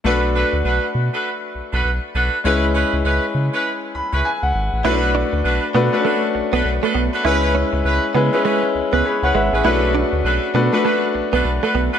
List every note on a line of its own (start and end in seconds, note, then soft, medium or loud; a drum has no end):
0.04 0.44 B1 loud
0.04 2.40 A3 medium
0.04 0.26 D4 medium
0.04 2.41 D4 medium
0.04 0.26 F#4 medium
0.04 2.41 F#4 medium
0.04 0.26 A4 medium
0.04 0.26 B4 loud
0.04 2.42 B4 medium
0.35 0.56 D4 medium
0.35 0.56 F#4 medium
0.35 0.56 A4 medium
0.35 0.56 B4 medium
0.53 0.63 D2 medium
0.64 0.80 B1 medium
0.64 0.86 D4 medium
0.64 0.86 F#4 medium
0.64 0.86 A4 medium
0.64 0.86 B4 medium
0.95 1.10 B2 medium
1.13 1.30 D4 medium
1.13 1.30 F#4 medium
1.13 1.30 A4 medium
1.13 1.30 B4 medium
1.55 1.62 B1 soft
1.73 1.83 B1 loud
1.73 1.90 D4 medium
1.73 1.90 F#4 medium
1.73 1.90 A4 medium
1.73 1.90 B4 medium
1.85 2.00 B1 medium
2.14 2.30 B1 medium
2.14 2.36 D4 medium
2.14 2.36 F#4 medium
2.14 2.36 A4 medium
2.14 2.36 B4 medium
2.44 2.84 C#2 loud
2.44 4.80 G#3 medium
2.44 2.66 C#4 medium
2.44 4.81 C#4 medium
2.44 2.66 E4 medium
2.44 4.81 E4 medium
2.44 2.66 G#4 medium
2.44 2.66 B4 loud
2.44 4.81 B4 medium
2.74 2.96 C#4 medium
2.74 2.96 E4 medium
2.74 2.96 G#4 medium
2.74 2.96 B4 medium
2.93 3.03 C#2 medium
3.04 3.20 C#2 medium
3.04 3.26 C#4 medium
3.04 3.26 E4 medium
3.04 3.26 G#4 medium
3.04 3.26 B4 medium
3.35 3.50 C#3 loud
3.53 3.70 C#4 medium
3.53 3.70 E4 medium
3.53 3.70 G#4 medium
3.53 3.70 B4 medium
3.95 4.02 C#2 soft
3.95 4.23 B5 medium
4.13 4.23 C#2 loud
4.13 4.30 C#4 medium
4.13 4.30 E4 medium
4.13 4.30 G#4 medium
4.13 4.30 B4 medium
4.25 4.42 G#5 medium
4.43 4.53 C#2 medium
4.43 4.82 F#5 medium
4.55 4.70 G#1 loud
4.73 4.83 A1 medium
4.84 5.24 B1 loud
4.84 5.57 A3 medium
4.84 4.93 C#4 medium
4.84 5.13 D4 medium
4.84 5.00 E4 medium
4.84 5.13 F#4 medium
4.84 5.58 F#4 medium
4.84 5.13 A4 medium
4.84 5.13 B4 loud
4.84 5.58 B4 medium
4.91 5.61 D4 medium
5.15 5.30 D4 medium
5.33 5.43 D2 medium
5.33 muted clean electric guitar stroke soft
5.44 5.60 B1 medium
5.44 5.66 D4 medium
5.44 5.66 F#4 medium
5.44 5.66 A4 medium
5.44 5.66 B4 medium
5.74 5.90 B2 medium
5.74 5.89 A3 medium
5.74 5.90 B3 medium
5.74 5.89 D4 medium
5.74 5.89 F#4 medium
5.74 5.89 B4 medium
5.92 6.86 A3 medium
5.92 5.98 C#4 medium
5.92 6.03 D4 medium
5.92 6.03 F#4 medium
5.92 6.86 F#4 medium
5.92 6.04 A4 medium
5.92 6.04 B4 medium
5.92 6.86 B4 medium
5.99 6.89 D4 medium
6.04 6.20 A3 medium
6.04 6.26 D4 medium
6.04 6.26 F#4 medium
6.04 6.26 A4 medium
6.04 6.26 B4 medium
6.35 6.42 B1 soft
6.35 muted clean electric guitar stroke soft
6.53 6.62 B1 loud
6.53 6.63 B3 medium
6.53 6.70 D4 medium
6.53 6.70 F#4 medium
6.53 6.70 A4 medium
6.53 6.70 B4 medium
6.65 6.80 B1 medium
6.65 muted clean electric guitar stroke soft
6.83 6.93 A3 medium
6.83 7.00 D4 medium
6.83 7.00 F#4 medium
6.83 7.00 A4 medium
6.83 7.00 B4 medium
6.95 7.10 B1 medium
6.95 7.10 B3 medium
7.13 7.30 D4 medium
7.13 7.30 F#4 medium
7.13 7.30 A4 medium
7.13 7.24 B4 medium
7.24 7.64 C#2 loud
7.24 7.97 G#3 medium
7.24 7.53 C#4 medium
7.24 7.98 C#4 medium
7.24 7.40 E4 medium
7.24 7.53 E4 medium
7.24 7.98 E4 medium
7.24 7.53 G#4 medium
7.24 7.53 B4 loud
7.24 7.98 B4 medium
7.55 7.70 C#4 medium
7.73 7.83 C#2 medium
7.73 muted clean electric guitar stroke soft
7.85 8.00 C#2 loud
7.85 8.06 C#4 medium
7.85 8.06 E4 medium
7.85 8.06 G#4 medium
7.85 8.06 B4 medium
8.14 8.30 C#3 medium
8.14 8.29 G#3 medium
8.14 8.30 B3 medium
8.14 8.29 C#4 medium
8.14 8.29 E4 medium
8.14 8.29 B4 medium
8.33 9.26 G#3 medium
8.33 8.43 C#4 medium
8.33 9.05 C#4 medium
8.33 8.43 E4 medium
8.33 9.05 E4 medium
8.33 8.44 G#4 medium
8.33 8.44 B4 medium
8.33 9.05 B4 medium
8.45 8.60 G#3 medium
8.45 8.66 C#4 medium
8.45 8.66 E4 medium
8.45 8.66 G#4 medium
8.45 8.66 B4 medium
8.63 muted clean electric guitar stroke soft
8.75 8.82 C#2 soft
8.93 9.03 C#2 medium
8.93 9.03 B3 medium
8.93 9.10 C#4 medium
8.93 9.10 E4 medium
8.93 9.10 G#4 medium
8.93 9.10 B4 medium
9.05 9.22 G#4 medium
9.05 9.22 C#5 medium
9.05 9.33 B5 medium
9.23 9.32 C#2 medium
9.23 9.40 C#4 medium
9.23 9.40 E4 medium
9.23 9.40 G#4 medium
9.23 9.40 B4 medium
9.23 9.35 C#5 medium
9.23 9.33 F#5 medium
9.35 9.50 G#1 loud
9.35 9.50 G#3 medium
9.35 9.52 B4 medium
9.35 9.52 E5 medium
9.35 9.63 F#5 medium
9.52 9.62 A1 medium
9.52 9.70 C#4 medium
9.52 9.82 C#4 medium
9.52 9.70 E4 medium
9.52 9.81 G#4 medium
9.52 9.70 G#4 medium
9.52 9.64 B4 medium
9.64 10.04 B1 loud
9.64 10.37 A3 medium
9.64 9.93 D4 medium
9.64 10.38 D4 medium
9.64 9.80 E4 medium
9.64 9.93 F#4 medium
9.64 10.38 F#4 medium
9.64 9.93 A4 medium
9.64 9.93 B4 loud
9.64 10.38 B4 medium
9.95 10.10 D4 medium
10.13 10.22 D2 medium
10.13 muted clean electric guitar stroke soft
10.24 10.39 B1 loud
10.24 10.46 D4 medium
10.24 10.46 F#4 medium
10.24 10.46 A4 medium
10.24 10.46 B4 medium
10.54 10.69 B2 medium
10.54 10.69 A3 medium
10.54 10.70 B3 medium
10.54 10.69 D4 medium
10.54 10.69 F#4 medium
10.54 10.69 B4 medium
10.72 11.66 A3 medium
10.72 10.83 D4 medium
10.72 11.66 D4 medium
10.72 10.83 F#4 medium
10.72 11.66 F#4 medium
10.72 10.83 A4 medium
10.72 10.84 B4 medium
10.72 11.67 B4 medium
10.84 11.00 A3 medium
10.84 11.06 D4 medium
10.84 11.06 F#4 medium
10.84 11.06 A4 medium
10.84 11.06 B4 medium
11.14 11.22 B1 soft
11.14 muted clean electric guitar stroke soft
11.33 11.43 B1 medium
11.33 11.43 B3 medium
11.33 11.50 D4 medium
11.33 11.50 F#4 medium
11.33 11.50 A4 medium
11.33 11.50 B4 medium
11.45 11.60 B1 medium
11.45 muted clean electric guitar stroke soft
11.62 11.73 A3 medium
11.62 11.79 D4 medium
11.62 11.80 F#4 medium
11.62 11.80 A4 medium
11.62 11.80 B4 medium
11.75 11.90 B1 loud
11.75 11.90 B3 medium
11.92 11.99 D4 medium
11.92 11.99 F#4 medium
11.92 11.99 A4 medium
11.92 11.99 B4 medium